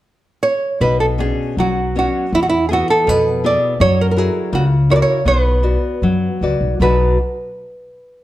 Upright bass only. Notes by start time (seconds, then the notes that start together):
0.80 B1
1.57 B1
2.33 E2
3.08 F2
3.80 F#2
4.53 C#2
5.25 B1
6.02 F#2
6.41 C#2
6.61 B1
6.80 B1